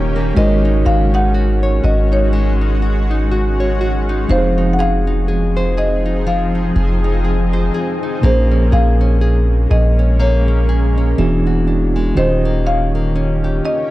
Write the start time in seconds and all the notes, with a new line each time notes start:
Already playing: D#1 D#3 A#3 C#4 F4 G4, downlifter
0.16 A#3
0.35 G#1 G#3 D#4 F#4 A#4 D#5
0.39 C5
0.45 C#5
0.65 D#4
0.85 G#1 F#4 F5
1.14 D#4 F#5
1.34 F#4
1.63 C#5
1.84 G#1 F#4 D#5
2.12 D#4 C#5
2.33 G#3
2.61 D#4
2.82 F#4
3.11 D#4
3.31 F#4
3.60 C#5
3.81 F#4
4.09 D#4
4.28 F1 F3 C4 D#4 F#4 G#4 C5 F5
4.38 G#4
4.58 D#4
4.73 F#5
4.79 G#4 F5
5.07 D#4
5.28 G#4
5.57 C5
5.77 G#4 D#5
6.06 D#4
6.27 F3 F5
6.55 D#4
6.76 F1 G#4
7.04 D#4
7.25 G#4
7.53 C5
7.74 G#4
8.03 D#4
8.21 A#1 A#2 G#3 A#3 C#4 G#4 A#4 C5
8.52 C#4
8.72 A#1 G#4 F5
9.01 C#4
9.21 G#4
9.71 A#1 G#4 D#5
9.99 C#4
10.20 A#3 C#5
10.48 C#4
10.69 G#4
10.98 C#4
11.18 E1 E3 B3 D4 F#4 G#4
11.47 F#4
11.67 D4
11.96 G#3
12.15 D#1 D#3 A#3 C#4 F4 G4 C5 D#5
12.45 A#3
12.66 C#4 F5
12.95 A#3
13.16 C#4
13.44 G4
13.65 C#4 D#5